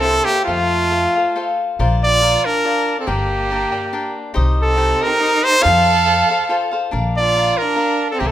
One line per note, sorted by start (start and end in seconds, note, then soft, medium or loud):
0.00 0.17 C2 medium
0.00 0.28 C4 medium
0.00 0.27 E4 medium
0.00 0.27 G4 medium
0.00 0.26 A4 loud
0.00 0.28 C5 medium
0.04 0.27 E5 medium
0.24 0.45 A#3 medium
0.24 0.44 G4 loud
0.24 0.48 E5 medium
0.29 0.47 G4 soft
0.29 0.47 C5 medium
0.45 1.04 F2 medium
0.45 1.54 A3 medium
0.45 1.54 F4 medium
0.45 0.90 F4 medium
0.45 0.89 A4 medium
0.45 0.91 C5 medium
0.49 0.91 F5 medium
0.90 1.15 F4 medium
0.90 1.15 A4 soft
0.90 1.15 C5 soft
0.90 1.14 F5 medium
1.15 1.35 A4 soft
1.15 1.34 C5 soft
1.15 1.35 F5 soft
1.36 1.78 F4 medium
1.36 1.79 A4 medium
1.36 1.79 C5 medium
1.36 1.80 F5 medium
1.79 2.35 A#1 medium
1.79 2.20 F4 medium
1.79 2.22 A#4 medium
1.79 2.21 C5 medium
1.79 2.23 D5 medium
2.04 2.48 F4 medium
2.04 2.47 D5 loud
2.22 2.63 F4 medium
2.22 2.64 A#4 medium
2.22 2.65 C5 medium
2.22 2.64 D5 medium
2.45 2.99 D4 medium
2.45 2.98 A#4 medium
2.65 3.06 F4 medium
2.65 3.06 A#4 medium
2.65 3.07 C5 medium
2.65 3.06 D5 medium
3.00 3.10 C4 medium
3.00 3.09 A4 medium
3.07 3.63 G1 medium
3.07 4.17 A#3 medium
3.07 3.50 D4 medium
3.07 4.16 G4 medium
3.07 3.50 A#4 medium
3.07 3.51 D5 medium
3.07 3.52 G5 medium
3.51 3.75 D4 medium
3.51 3.72 A#4 medium
3.51 3.71 D5 medium
3.51 3.71 G5 medium
3.72 3.92 A#4 soft
3.72 3.93 D5 soft
3.72 3.92 G5 medium
3.93 4.33 D4 medium
3.93 4.33 A#4 medium
3.93 4.34 D5 medium
3.93 4.35 G5 medium
4.34 4.92 C2 medium
4.34 4.76 D#4 medium
4.34 4.76 G4 medium
4.34 4.77 C5 medium
4.34 4.76 D#5 medium
4.62 5.08 C4 medium
4.62 5.04 A4 medium
4.77 5.01 D#4 medium
4.77 5.01 G4 medium
4.77 5.00 C5 medium
4.77 5.00 D#5 medium
5.01 5.18 G4 soft
5.01 5.46 A#4 medium
5.01 5.20 C5 soft
5.01 5.20 D#5 soft
5.06 5.47 D#4 medium
5.20 5.44 D#4 medium
5.20 5.43 G4 medium
5.20 5.42 C5 medium
5.20 5.41 D#5 medium
5.42 5.61 G4 soft
5.42 5.61 C5 soft
5.42 5.64 C5 loud
5.42 5.61 D#5 soft
5.47 5.69 D#4 medium
5.61 6.05 F4 medium
5.61 6.04 A4 medium
5.61 6.05 C5 medium
5.61 6.06 F5 medium
5.61 6.73 F5 medium
5.65 6.21 F2 medium
5.65 6.75 A4 medium
6.05 6.29 F4 medium
6.05 6.29 A4 medium
6.05 6.29 C5 medium
6.05 6.28 F5 medium
6.29 6.49 A4 soft
6.29 6.49 C5 medium
6.29 6.49 F5 medium
6.49 6.74 F4 medium
6.49 6.72 A4 medium
6.49 6.71 C5 medium
6.49 6.70 F5 medium
6.71 6.91 A4 soft
6.71 6.92 C5 medium
6.71 6.91 F5 soft
6.91 7.49 A#1 medium
6.91 7.34 D4 medium
6.91 7.36 A#4 medium
6.91 7.35 D5 medium
6.91 7.36 F5 medium
7.18 7.64 F4 medium
7.18 7.59 D5 medium
7.36 7.74 D4 medium
7.36 7.76 A#4 medium
7.36 7.76 D5 medium
7.36 7.75 F5 medium
7.58 8.10 A#4 medium
7.62 8.14 D4 medium
7.76 8.19 D4 medium
7.76 8.19 A#4 medium
7.76 8.20 D5 medium
7.76 8.21 F5 medium
8.11 8.26 C4 medium
8.11 8.21 A4 medium
8.20 8.31 C2 medium
8.20 8.29 G4 medium
8.20 8.31 A#4 medium
8.20 8.31 C5 medium
8.20 8.31 E5 medium
8.20 8.31 G5 medium
8.25 8.31 A#3 medium
8.25 8.31 A4 medium